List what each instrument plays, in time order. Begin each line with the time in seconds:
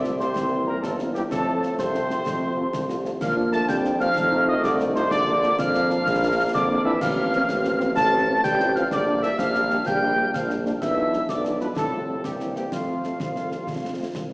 Already playing: tuba C2, trombone section C3 A3, trumpet section D5
0.04 french horn section F3 A3 F4, snare
0.19 euphonium C3, french horn section F3 A3 F4, trumpet section C5, piccolo C6, snare
0.36 tuba C2, trombone section E3 A#3, concert bass drum, snare
0.51 french horn section G3 C4 E4
0.66 euphonium A#2, french horn section G3 C4 E4, trumpet section A#4, piccolo A#5
0.83 tuba G1, euphonium A2, trumpet section A4, piccolo A5, concert bass drum, snare
0.99 french horn section G3 C4 E4, snare
1.15 euphonium G2, french horn section G3 C4 E4, trumpet section G4, piccolo G5, snare
1.30 tuba F2, euphonium A2, trombone section F3 A3, trumpet section A4, piccolo A5, concert bass drum, snare
1.47 french horn section A3 C4 F4
1.63 french horn section A3 C4 F4, snare
1.78 tuba C2, euphonium C3, trumpet section C5, piccolo C6, concert bass drum, snare
1.95 french horn section A3 C4 F4, snare
2.10 french horn section A3 C4 F4, snare
2.26 tuba F2, concert bass drum, snare
2.42 french horn section A3 C4 F4
2.57 french horn section A3 C4 F4
2.73 tuba C2, concert bass drum, snare
2.89 french horn section A3 C4 F4, snare
3.04 french horn section A3 C4 F4, snare
3.21 tuba A#2, euphonium F3, trombone section F3 D4, trumpet section F5, piccolo F6, concert bass drum, snare, crash
3.36 french horn section A#3 D4 F4
3.53 euphonium A3, french horn section A#3 D4 F4, trumpet section A5, piccolo A6, snare
3.69 tuba F2, euphonium G3, trumpet section G5, piccolo G6, concert bass drum, snare
3.85 french horn section A#3 D4 F4, snare
4.00 euphonium F3, french horn section A#3 D4 F4, trumpet section F5, piccolo F6, snare
4.15 tuba F2, trombone section A3 D#4, concert bass drum, snare
4.32 french horn section A3 D#4 F4
4.48 euphonium D#3, french horn section A3 D#4 F4, trumpet section D#5, piccolo D#6
4.63 tuba C2, euphonium D3, trumpet section D5, piccolo D6, concert bass drum, snare
4.79 french horn section A3 D#4 F4, snare
4.95 euphonium C3, french horn section A3 D#4 F4, trumpet section C5, piccolo C6, snare
5.11 tuba A#1, euphonium D3, trombone section A#3 D4, trumpet section D5, piccolo D6, concert bass drum, snare
5.26 french horn section A#3 D4 F4
5.43 french horn section A#3 D4 F4, snare
5.58 tuba F2, euphonium F3, trumpet section F5, piccolo F6, concert bass drum, snare
5.75 french horn section A#3 D4 F4, snare
5.90 french horn section A#3 D4 F4, snare
6.06 tuba A#1, concert bass drum, snare
6.23 french horn section A#3 D4 F4
6.39 french horn section A#3 D4 F4
6.53 tuba F2, euphonium D3, trumpet section D5, piccolo D6, concert bass drum, snare
6.70 french horn section A#3 D4 F4
6.84 euphonium E3, french horn section A#3 D4 F4, trumpet section E5, piccolo E6
7.01 tuba A1, euphonium F3, trombone section C4, trumpet section F5, piccolo F6, concert bass drum, snare, crash
7.17 french horn section C4 F4
7.32 french horn section C4 F4, snare
7.49 tuba A1, concert bass drum, snare
7.64 french horn section C4 F4, snare
7.80 french horn section C4 F4, snare
7.96 tuba A1, euphonium A3, trombone section A3, trumpet section A5, piccolo A6, concert bass drum, snare
8.12 french horn section C4 F4
8.27 french horn section C4 F4
8.44 tuba A1, euphonium G3, trumpet section G5, piccolo G6, concert bass drum, snare
8.60 french horn section C4 F4, snare
8.75 euphonium F3, french horn section C4 F4, trumpet section F5, piccolo F6, snare
8.91 tuba A#1, euphonium D3, trombone section G3 D4, trumpet section D5, piccolo D6, concert bass drum, snare
9.07 french horn section A#3 D4 G4
9.22 euphonium E3, french horn section A#3 D4 G4, trumpet section E5, piccolo E6, snare
9.38 tuba A#1, euphonium F3, trumpet section F5, piccolo F6, concert bass drum, snare
9.55 french horn section A#3 D4 G4, snare
9.70 french horn section A#3 D4 G4, snare
9.86 tuba A#1, euphonium G3, trumpet section G5, piccolo G6, concert bass drum, snare
10.01 french horn section A#3 D4 G4
10.17 french horn section A#3 D4 G4
10.34 tuba A#1, euphonium F3, trumpet section F5, piccolo F6, concert bass drum, snare
10.49 french horn section A#3 D4 G4, snare
10.65 french horn section A#3 D4 G4, snare
10.81 tuba B1, euphonium E3, trombone section F3 D4, trumpet section E5, piccolo E6, concert bass drum, snare, crash
10.96 french horn section G#3 D4 F4
11.13 french horn section G#3 D4 F4, snare
11.29 tuba B1, euphonium D3, trumpet section D5, piccolo D6, concert bass drum, snare
11.45 french horn section G#3 D4 F4, snare
11.60 euphonium B2, french horn section G#3 D4 F4, trumpet section B4, piccolo B5, snare
11.76 tuba C2, euphonium A2, trombone section C4, trumpet section A4, piccolo A5, concert bass drum, snare
11.92 french horn section A3 C4 F4
12.09 french horn section A3 C4 F4
12.24 tuba C2, euphonium G2, trombone section E3 A#3, trumpet section G4, piccolo G5, concert bass drum, snare
12.40 french horn section A#3 C4 E4, snare
12.56 euphonium G2, french horn section A#3 C4 E4, trumpet section G4, piccolo G5, snare
12.72 euphonium F2, tuba F2, trombone section F3 A3, trumpet section F4, piccolo F5, concert bass drum, snare
12.88 french horn section A3 C4 F4
13.04 french horn section A3 C4 F4, snare
13.20 tuba C2, concert bass drum, snare
13.36 french horn section A3 C4 F4, snare
13.51 french horn section A3 C4 F4, snare
13.67 tuba F2, concert bass drum, snare
13.83 french horn section A3 C4 F4
13.99 french horn section A3 C4 F4
14.14 tuba C2, concert bass drum, snare